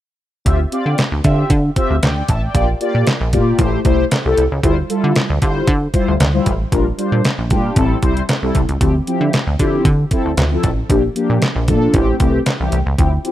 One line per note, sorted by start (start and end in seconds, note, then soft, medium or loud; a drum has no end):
0.45 0.66 D2 medium
0.45 0.59 C4 medium
0.45 0.59 F4 medium
0.45 0.59 G4 medium
0.45 0.60 E5 medium
0.45 kick loud
0.45 closed hi-hat medium
0.72 0.98 C4 medium
0.72 0.98 F4 medium
0.72 0.98 G4 medium
0.72 0.98 D5 medium
0.72 closed hi-hat medium
0.86 0.95 D3 medium
0.98 snare loud
0.98 clap medium
0.98 closed hi-hat medium
1.12 1.21 D2 medium
1.24 1.45 D3 medium
1.24 1.50 C4 medium
1.24 1.50 F4 medium
1.24 1.50 G4 medium
1.24 1.50 E5 medium
1.24 kick medium
1.24 closed hi-hat medium
1.50 1.70 D3 loud
1.50 kick loud
1.50 closed hi-hat medium
1.76 1.96 C4 medium
1.76 1.96 F4 medium
1.76 1.96 G4 medium
1.76 1.96 E5 loud
1.76 kick medium
1.76 closed hi-hat medium
1.90 2.00 D2 medium
2.02 2.23 D2 medium
2.02 2.28 D5 medium
2.02 2.27 G5 medium
2.02 snare loud
2.02 clap medium
2.02 closed hi-hat medium
2.28 2.49 A1 medium
2.28 2.42 E5 medium
2.28 2.42 A5 medium
2.28 kick medium
2.28 closed hi-hat medium
2.42 2.53 D5 medium
2.42 2.67 G5 medium
2.54 2.75 A#1 medium
2.54 2.68 A#3 medium
2.54 2.68 F4 medium
2.54 2.68 G4 medium
2.54 2.68 D5 medium
2.54 kick loud
2.54 closed hi-hat medium
2.80 3.06 A#3 medium
2.80 3.06 F4 medium
2.80 3.06 G4 medium
2.80 3.07 D5 medium
2.80 closed hi-hat medium
2.95 3.04 A#2 loud
3.07 snare loud
3.07 clap medium
3.07 closed hi-hat medium
3.21 3.35 A#1 loud
3.32 3.53 A#2 loud
3.32 3.58 A#3 medium
3.32 3.58 F4 medium
3.32 3.57 G4 medium
3.32 3.59 D5 medium
3.32 kick medium
3.32 closed hi-hat medium
3.58 3.79 A1 loud
3.58 3.80 A3 medium
3.58 3.80 E4 medium
3.58 3.80 G4 medium
3.58 3.80 C5 loud
3.58 kick loud
3.58 closed hi-hat medium
3.84 4.05 C2 medium
3.84 4.04 A3 medium
3.84 4.04 E4 medium
3.84 4.04 G4 medium
3.84 4.05 C5 loud
3.84 kick medium
3.84 closed hi-hat medium
4.11 snare loud
4.11 clap medium
4.11 closed hi-hat medium
4.24 4.35 C2 medium
4.24 4.44 A3 medium
4.24 4.44 E4 medium
4.24 4.44 G4 medium
4.24 4.44 A4 loud
4.37 4.48 C2 medium
4.37 closed hi-hat medium
4.51 4.61 C#2 medium
4.63 4.83 D2 medium
4.63 4.77 G3 medium
4.63 4.77 E4 medium
4.63 4.77 F4 medium
4.63 4.77 C5 medium
4.63 kick loud
4.63 closed hi-hat medium
4.89 5.15 G3 medium
4.89 5.15 E4 medium
4.89 5.15 F4 medium
4.89 5.15 A4 medium
4.89 closed hi-hat medium
5.04 5.13 D3 loud
5.16 snare loud
5.16 clap medium
5.16 closed hi-hat medium
5.30 5.39 D2 loud
5.41 5.62 D3 loud
5.41 5.67 G3 medium
5.41 5.67 E4 medium
5.41 5.67 F4 medium
5.41 5.67 C5 medium
5.41 kick medium
5.41 closed hi-hat medium
5.67 5.88 D3 loud
5.67 kick loud
5.67 closed hi-hat medium
5.93 6.13 G3 medium
5.93 6.13 E4 medium
5.93 6.13 F4 medium
5.93 6.14 C5 loud
5.93 kick medium
5.93 closed hi-hat medium
6.08 6.17 D2 medium
6.20 6.40 D2 loud
6.20 snare loud
6.20 clap medium
6.20 closed hi-hat loud
6.33 6.52 G3 medium
6.33 6.52 E4 medium
6.33 6.53 F4 medium
6.33 6.53 C5 medium
6.46 6.66 A1 medium
6.46 kick medium
6.46 closed hi-hat medium
6.71 6.92 A#1 medium
6.71 6.85 G3 medium
6.71 6.86 D4 medium
6.71 6.86 F4 medium
6.71 6.86 A#4 medium
6.71 kick loud
6.71 closed hi-hat medium
6.98 7.24 G3 medium
6.98 7.24 D4 medium
6.98 7.24 F4 medium
6.98 7.24 C5 medium
6.98 closed hi-hat medium
7.12 7.22 A#2 loud
7.25 snare loud
7.25 clap medium
7.25 closed hi-hat medium
7.38 7.52 A#1 medium
7.50 7.71 A#2 loud
7.50 7.74 G3 medium
7.50 7.76 D4 medium
7.50 7.76 F4 medium
7.50 7.76 G4 loud
7.50 kick medium
7.50 closed hi-hat medium
7.76 7.96 A1 loud
7.76 7.97 G3 medium
7.76 7.97 C4 medium
7.76 7.97 E4 medium
7.76 7.98 A4 loud
7.76 kick loud
7.76 closed hi-hat medium
8.02 8.23 C2 medium
8.02 8.22 G3 medium
8.02 8.22 C4 medium
8.02 8.22 E4 medium
8.02 8.22 C5 medium
8.02 kick medium
8.02 closed hi-hat medium
8.17 closed hi-hat soft
8.29 snare loud
8.29 clap medium
8.29 closed hi-hat medium
8.42 8.52 C2 medium
8.42 8.61 G3 medium
8.42 8.61 C4 medium
8.42 8.61 E4 medium
8.42 8.61 A4 loud
8.55 8.66 C2 medium
8.55 kick medium
8.55 closed hi-hat medium
8.69 8.78 C#2 medium
8.69 closed hi-hat soft
8.80 9.01 D2 medium
8.80 8.94 F3 medium
8.80 8.94 C4 medium
8.80 8.95 E4 medium
8.80 8.95 G4 loud
8.80 kick loud
8.80 closed hi-hat medium
9.07 9.32 F3 medium
9.07 9.33 C4 medium
9.07 9.33 E4 medium
9.07 9.33 G4 medium
9.07 closed hi-hat medium
9.21 9.30 D3 loud
9.33 snare loud
9.33 clap medium
9.33 closed hi-hat medium
9.47 9.56 D2 medium
9.59 9.79 D3 loud
9.59 9.85 F3 medium
9.59 9.85 C4 medium
9.59 9.85 E4 medium
9.59 9.85 G4 medium
9.59 kick medium
9.59 closed hi-hat medium
9.85 10.05 D3 loud
9.85 kick loud
9.85 closed hi-hat medium
10.11 10.31 F3 medium
10.11 10.31 C4 medium
10.11 10.31 E4 medium
10.11 10.31 A4 loud
10.11 kick medium
10.11 closed hi-hat medium
10.25 10.35 D2 medium
10.37 10.57 D2 loud
10.37 snare loud
10.37 clap medium
10.37 closed hi-hat medium
10.51 10.70 F3 medium
10.51 10.70 C4 medium
10.51 10.70 E4 medium
10.51 10.70 A4 loud
10.63 10.84 A1 medium
10.63 kick medium
10.63 closed hi-hat medium
10.89 11.10 A#1 medium
10.89 11.03 F3 medium
10.89 11.03 A#3 medium
10.89 11.03 D4 medium
10.89 11.03 G4 medium
10.89 kick loud
10.89 closed hi-hat medium
11.15 11.41 F3 medium
11.15 11.41 A#3 medium
11.15 11.41 D4 medium
11.15 11.41 G4 medium
11.15 closed hi-hat medium
11.30 11.39 A#2 medium
11.42 snare loud
11.42 clap medium
11.42 closed hi-hat medium
11.56 11.70 A#1 loud
11.68 11.88 A#2 loud
11.68 11.93 F3 medium
11.68 11.94 A#3 medium
11.68 11.94 D4 medium
11.68 11.94 A4 medium
11.68 kick medium
11.68 closed hi-hat medium
11.94 12.14 A1 loud
11.94 12.15 E3 medium
11.94 12.15 A3 medium
11.94 12.15 C4 medium
11.94 12.15 G4 medium
11.94 kick loud
11.94 closed hi-hat medium
12.20 12.40 C2 medium
12.20 12.40 E3 medium
12.20 12.40 A3 medium
12.20 12.40 C4 medium
12.20 12.40 G4 medium
12.20 kick loud
12.20 closed hi-hat medium
12.46 snare loud
12.46 clap medium
12.46 closed hi-hat medium
12.60 12.69 C2 medium
12.60 12.79 E3 medium
12.60 12.79 A3 medium
12.60 12.79 C4 medium
12.60 12.79 G4 loud
12.72 12.83 C2 medium
12.72 closed hi-hat medium
12.86 12.96 C#2 medium
12.98 13.18 D2 loud
12.98 13.12 F3 medium
12.98 13.12 C4 medium
12.98 13.12 E4 medium
12.98 13.12 G4 medium
12.98 kick loud
12.98 closed hi-hat medium
13.24 13.32 F3 medium
13.24 13.32 C4 medium
13.24 13.32 E4 medium
13.24 13.32 G4 medium
13.24 closed hi-hat medium